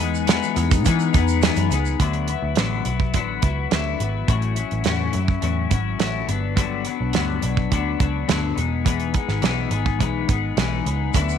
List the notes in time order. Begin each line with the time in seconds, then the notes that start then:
Already playing: E2
0.00 G#3 B3 D#4, shaker
0.15 shaker
0.27 E3 G#3 B3 D#4, snare, closed hi-hat, shaker
0.43 shaker
0.56 E2 G#3 B3 D#4, closed hi-hat, shaker
0.71 kick, closed hi-hat, shaker
0.85 E3 G#3 B3 D#4, kick, closed hi-hat, shaker
0.99 shaker
1.13 E2 G#3 B3 D#4, kick, closed hi-hat, shaker
1.28 shaker
1.42 E3 G#3 B3 D#4, snare, closed hi-hat, shaker
1.56 F#2, closed hi-hat, shaker
1.70 C#2 G#3 B3 D#4, closed hi-hat, shaker
1.85 shaker
2.00 D2 D3 F#3 B3 E4, kick, closed hi-hat
2.13 closed hi-hat
2.28 B3 E4, closed hi-hat
2.32 F#3
2.42 D2
2.55 A1 D3 F#3 B3 E4, snare, closed hi-hat
2.85 B1 F#3 B3 E4, closed hi-hat
3.00 kick
3.14 A1 D3 F#3 B3, kick, closed hi-hat
3.18 E4
3.42 C#2 F#3 B3 E4, kick, closed hi-hat
3.71 D2 D3 F#3 B3 E4, snare, closed hi-hat
3.98 G#1 F#3 B3 E4, closed hi-hat
4.28 A1 A2 F#3 C#4 E4, kick, closed hi-hat
4.42 closed hi-hat
4.55 F#3 C#4 E4, closed hi-hat
4.71 A1, closed hi-hat
4.84 E2 A2 F#3 C#4 E4, snare, closed hi-hat
5.13 F#2 C#4 E4, closed hi-hat
5.17 F#3
5.28 kick
5.41 E2 A2 F#3 C#4 E4, closed hi-hat
5.70 G#1 F#3 C#4 E4, kick, closed hi-hat
5.99 A1 A2 F#3 C#4 E4, snare, closed hi-hat
6.27 G1 F#3 B3 D4, closed hi-hat
6.56 G2 D3 F#3 B3 D4, kick, closed hi-hat
6.85 F#3 B3 D4, closed hi-hat
7.00 B1
7.13 D2 G2 D3 F#3 B3 D4, snare, closed hi-hat
7.41 B1 F#3 B3 D4, closed hi-hat
7.57 kick
7.71 D2 D3 F#3 B3 D4, kick, closed hi-hat
7.99 C#2 F#3 B3 D4, kick, closed hi-hat
8.28 D2 G2 D3 F#3 B3 D4, snare, closed hi-hat
8.55 E1 G#3 B3 D#4, closed hi-hat
8.85 E3 G#3 B3 D#4, kick, closed hi-hat
9.00 closed hi-hat
9.13 G#3 B3 D#4, kick, closed hi-hat
9.29 G#1, snare
9.42 B1 E3 G#3 B3 D#4, snare, closed hi-hat
9.70 G#1 G#3 B3 D#4, closed hi-hat
9.86 kick
9.99 B1 E3 G#3 B3 D#4, kick, closed hi-hat
10.28 G#1 B3 D#4, kick, closed hi-hat
10.32 G#3
10.57 B1 E3 G#3 B3 D#4, snare, closed hi-hat
10.85 C#2 G#3 B3 D#4, closed hi-hat
11.14 D2 D3 F#3 B3 E4, kick, closed hi-hat, shaker
11.29 shaker